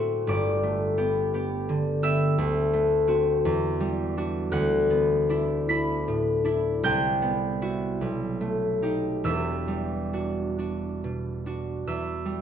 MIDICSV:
0, 0, Header, 1, 2, 480
1, 0, Start_track
1, 0, Key_signature, 1, "minor"
1, 0, Tempo, 700117
1, 197, Time_signature, 6, 3, 24, 8
1, 2118, Tempo, 719424
1, 3078, Tempo, 768246
1, 3558, Tempo, 777202
1, 5478, Tempo, 842697
1, 5958, Tempo, 886263
1, 6918, Tempo, 843882
1, 7398, Tempo, 766284
1, 7742, End_track
2, 0, Start_track
2, 0, Title_t, "Harp"
2, 0, Program_c, 0, 46
2, 0, Note_on_c, 0, 45, 57
2, 0, Note_on_c, 0, 57, 55
2, 0, Note_on_c, 0, 60, 50
2, 0, Note_on_c, 0, 66, 53
2, 0, Note_on_c, 0, 72, 59
2, 0, Note_on_c, 0, 76, 63
2, 0, Note_on_c, 0, 84, 78
2, 0, Note_on_c, 0, 88, 82
2, 185, Note_on_c, 0, 31, 66
2, 193, Note_on_c, 0, 43, 67
2, 196, Note_on_c, 0, 86, 87
2, 203, Note_on_c, 0, 74, 66
2, 210, Note_off_c, 0, 88, 0
2, 214, Note_off_c, 0, 45, 0
2, 214, Note_off_c, 0, 76, 0
2, 216, Note_off_c, 0, 84, 0
2, 217, Note_off_c, 0, 60, 0
2, 219, Note_off_c, 0, 66, 0
2, 219, Note_off_c, 0, 72, 0
2, 426, Note_off_c, 0, 57, 0
2, 434, Note_on_c, 0, 57, 61
2, 669, Note_on_c, 0, 59, 57
2, 671, Note_on_c, 0, 67, 63
2, 910, Note_off_c, 0, 59, 0
2, 913, Note_off_c, 0, 67, 0
2, 918, Note_on_c, 0, 59, 55
2, 921, Note_on_c, 0, 67, 58
2, 1158, Note_on_c, 0, 50, 62
2, 1382, Note_off_c, 0, 59, 0
2, 1386, Note_off_c, 0, 67, 0
2, 1389, Note_on_c, 0, 59, 56
2, 1393, Note_on_c, 0, 88, 108
2, 1394, Note_on_c, 0, 67, 62
2, 1397, Note_on_c, 0, 76, 71
2, 1634, Note_on_c, 0, 38, 78
2, 1651, Note_off_c, 0, 31, 0
2, 1652, Note_off_c, 0, 59, 0
2, 1654, Note_off_c, 0, 50, 0
2, 1654, Note_off_c, 0, 67, 0
2, 1655, Note_off_c, 0, 43, 0
2, 1866, Note_off_c, 0, 57, 0
2, 1874, Note_on_c, 0, 57, 65
2, 2108, Note_on_c, 0, 60, 60
2, 2113, Note_on_c, 0, 66, 66
2, 2359, Note_on_c, 0, 40, 72
2, 2370, Note_off_c, 0, 60, 0
2, 2372, Note_off_c, 0, 57, 0
2, 2373, Note_off_c, 0, 38, 0
2, 2595, Note_on_c, 0, 55, 67
2, 2836, Note_off_c, 0, 66, 0
2, 2842, Note_on_c, 0, 62, 66
2, 2846, Note_on_c, 0, 66, 61
2, 2850, Note_off_c, 0, 86, 0
2, 2856, Note_off_c, 0, 74, 0
2, 3069, Note_on_c, 0, 38, 78
2, 3073, Note_on_c, 0, 90, 107
2, 3078, Note_on_c, 0, 78, 93
2, 3094, Note_off_c, 0, 55, 0
2, 3097, Note_off_c, 0, 40, 0
2, 3311, Note_on_c, 0, 59, 74
2, 3551, Note_off_c, 0, 62, 0
2, 3557, Note_on_c, 0, 62, 62
2, 3562, Note_on_c, 0, 64, 67
2, 3796, Note_off_c, 0, 64, 0
2, 3797, Note_off_c, 0, 62, 0
2, 3800, Note_on_c, 0, 95, 104
2, 3803, Note_on_c, 0, 62, 53
2, 3805, Note_on_c, 0, 64, 68
2, 3811, Note_on_c, 0, 83, 79
2, 3950, Note_off_c, 0, 88, 0
2, 3954, Note_off_c, 0, 76, 0
2, 4040, Note_on_c, 0, 45, 62
2, 4263, Note_off_c, 0, 62, 0
2, 4263, Note_off_c, 0, 64, 0
2, 4268, Note_on_c, 0, 62, 59
2, 4273, Note_on_c, 0, 64, 69
2, 4507, Note_on_c, 0, 36, 77
2, 4512, Note_on_c, 0, 91, 113
2, 4517, Note_on_c, 0, 79, 84
2, 4528, Note_off_c, 0, 38, 0
2, 4528, Note_off_c, 0, 62, 0
2, 4530, Note_off_c, 0, 45, 0
2, 4739, Note_off_c, 0, 59, 0
2, 4746, Note_on_c, 0, 59, 65
2, 4984, Note_off_c, 0, 64, 0
2, 4987, Note_off_c, 0, 66, 0
2, 4991, Note_on_c, 0, 64, 58
2, 4994, Note_on_c, 0, 66, 68
2, 5234, Note_on_c, 0, 35, 64
2, 5246, Note_off_c, 0, 90, 0
2, 5247, Note_off_c, 0, 36, 0
2, 5249, Note_off_c, 0, 78, 0
2, 5251, Note_off_c, 0, 64, 0
2, 5253, Note_off_c, 0, 66, 0
2, 5479, Note_on_c, 0, 57, 61
2, 5717, Note_on_c, 0, 63, 51
2, 5719, Note_on_c, 0, 67, 56
2, 5952, Note_on_c, 0, 28, 57
2, 5958, Note_on_c, 0, 40, 65
2, 5958, Note_on_c, 0, 88, 88
2, 5965, Note_on_c, 0, 76, 72
2, 5977, Note_off_c, 0, 57, 0
2, 5977, Note_off_c, 0, 63, 0
2, 5979, Note_off_c, 0, 35, 0
2, 6143, Note_off_c, 0, 95, 0
2, 6152, Note_off_c, 0, 83, 0
2, 6189, Note_on_c, 0, 55, 59
2, 6437, Note_on_c, 0, 62, 48
2, 6440, Note_on_c, 0, 66, 55
2, 6676, Note_off_c, 0, 62, 0
2, 6682, Note_off_c, 0, 66, 0
2, 6683, Note_on_c, 0, 62, 43
2, 6688, Note_on_c, 0, 66, 48
2, 6767, Note_off_c, 0, 91, 0
2, 6771, Note_off_c, 0, 79, 0
2, 6929, Note_on_c, 0, 47, 48
2, 6975, Note_off_c, 0, 59, 0
2, 7162, Note_off_c, 0, 62, 0
2, 7166, Note_off_c, 0, 66, 0
2, 7169, Note_on_c, 0, 62, 46
2, 7173, Note_on_c, 0, 66, 50
2, 7396, Note_off_c, 0, 88, 0
2, 7397, Note_off_c, 0, 40, 0
2, 7403, Note_on_c, 0, 40, 58
2, 7404, Note_off_c, 0, 76, 0
2, 7405, Note_on_c, 0, 88, 86
2, 7412, Note_on_c, 0, 76, 63
2, 7413, Note_off_c, 0, 28, 0
2, 7418, Note_off_c, 0, 62, 0
2, 7423, Note_off_c, 0, 47, 0
2, 7635, Note_off_c, 0, 55, 0
2, 7642, Note_on_c, 0, 55, 52
2, 7742, Note_off_c, 0, 40, 0
2, 7742, Note_off_c, 0, 55, 0
2, 7742, Note_off_c, 0, 66, 0
2, 7742, Note_off_c, 0, 67, 0
2, 7742, Note_off_c, 0, 76, 0
2, 7742, Note_off_c, 0, 88, 0
2, 7742, End_track
0, 0, End_of_file